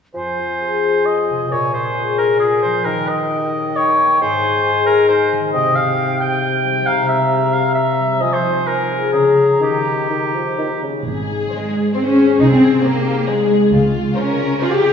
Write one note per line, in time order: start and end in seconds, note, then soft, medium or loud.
0.14 1.53 F2 soft
0.14 1.47 F3 soft
0.14 1.07 C5 soft
0.14 1.47 G#5 soft
0.38 1.06 F4 soft
0.60 1.95 G#4 soft
0.83 1.53 C5 soft
1.05 1.54 D#5 medium
1.30 1.54 C3 soft
1.51 2.84 A#2 soft
1.51 2.88 A#2 soft
1.51 1.73 C#5 soft
1.51 2.39 G#5 soft
1.74 2.40 F4 soft
1.74 2.17 C5 soft
1.97 2.88 G#4 soft
2.18 2.39 A#4 soft
2.18 4.23 A#4 soft
2.40 2.89 F4 soft
2.40 2.62 G#4 soft
2.40 2.87 G#5 soft
2.62 2.89 F3 soft
2.62 2.86 C5 medium
2.85 4.18 D#3 soft
2.85 4.23 D#3 soft
2.85 3.10 A#4 medium
2.85 3.77 G5 soft
3.08 3.77 D#4 soft
3.08 3.78 D#5 medium
3.33 4.23 G4 soft
3.56 4.23 C#5 soft
3.76 4.42 D#4 soft
3.76 4.20 C#5 medium
3.76 4.23 G5 soft
4.00 4.23 A#3 soft
4.21 5.51 G#2 soft
4.21 5.56 G#2 soft
4.21 4.86 C5 medium
4.21 5.09 G#5 soft
4.44 5.08 D#4 soft
4.66 5.56 G#4 soft
4.86 5.08 A#4 medium
4.86 6.18 C5 soft
5.09 5.74 D#4 soft
5.09 5.31 C5 medium
5.09 5.52 G#5 soft
5.31 5.55 D#3 soft
5.53 6.86 C3 soft
5.53 8.22 C3 soft
5.53 5.77 D#5 medium
5.53 6.64 G5 soft
5.76 6.41 D#4 soft
5.76 6.20 F5 medium
5.98 7.31 G4 soft
6.20 9.15 C5 soft
6.20 6.88 G5 medium
6.42 6.89 D#4 soft
6.65 7.98 G3 soft
6.87 8.23 C3 soft
6.87 7.08 F5 medium
6.87 8.24 A#5 soft
7.08 7.76 C4 soft
7.08 7.55 E5 medium
7.32 8.23 G4 soft
7.53 8.23 A#4 soft
7.53 7.74 F5 medium
7.75 9.15 C4 soft
7.75 8.23 E5 medium
7.99 8.23 G3 soft
8.21 8.96 F3 soft
8.21 9.63 F3 soft
8.21 8.35 D#5 medium
8.21 9.15 G#5 soft
8.33 8.69 C5 medium
8.44 9.15 D#4 soft
8.67 9.36 F4 soft
8.67 9.12 A#4 medium
8.90 9.63 G#4 soft
9.13 9.60 C#3 soft
9.13 9.64 C#3 soft
9.13 9.60 G#4 soft
9.13 10.83 A#5 soft
9.37 9.63 F4 soft
9.37 10.10 A#4 soft
9.61 10.04 D#3 soft
9.61 11.08 D#3 soft
9.61 10.81 G4 soft
9.87 10.35 D#4 soft
10.10 10.36 D#3 soft
10.10 11.09 A#4 soft
10.35 10.58 F3 soft
10.35 10.82 D#4 soft
10.59 10.69 D#3 soft
10.59 11.09 A#3 soft
10.82 11.06 C#3 soft
10.82 11.28 D#4 soft
11.06 11.41 G#1 soft
11.06 12.41 G#2 soft
11.06 11.91 G#4 soft
11.29 11.72 D#4 soft
11.50 12.41 D#3 soft
11.50 11.92 G#3 soft
11.50 11.84 C5 soft
11.73 12.60 D#4 soft
11.94 12.06 C4 soft
11.94 12.07 C4 soft
11.94 13.26 G#4 soft
11.94 12.27 C5 soft
11.94 12.38 C5 soft
12.06 12.38 C#4 soft
12.06 12.39 C#4 soft
12.18 13.49 C4 soft
12.39 12.74 C2 soft
12.39 13.74 C3 soft
12.39 12.50 D#4 medium
12.39 12.44 D#4 soft
12.39 12.82 G#4 soft
12.50 12.82 C4 soft
12.50 12.83 C4 soft
12.83 14.16 G#3 soft
12.83 13.27 A#3 soft
12.83 13.28 A#3 soft
12.83 13.28 G4 soft
12.83 13.16 C5 soft
13.06 13.74 D#4 soft
13.27 13.72 G#3 soft
13.27 13.73 G#3 soft
13.27 13.72 G#4 soft
13.27 14.59 G#4 soft
13.27 13.61 C5 soft
13.51 14.80 C4 soft
13.72 14.08 C#2 medium
13.72 14.93 C#3 soft
13.72 14.15 F4 soft
13.95 14.37 F4 soft
14.16 14.93 G#3 soft
14.16 14.57 C#4 medium
14.16 14.57 C#4 soft
14.16 14.60 A#4 medium
14.16 14.49 C5 soft
14.38 14.93 F4 soft
14.60 14.71 F4 medium
14.60 14.65 F4 soft
14.60 14.93 G#4 soft
14.60 14.93 C5 soft
14.71 14.93 G4 medium
14.82 14.93 C4 soft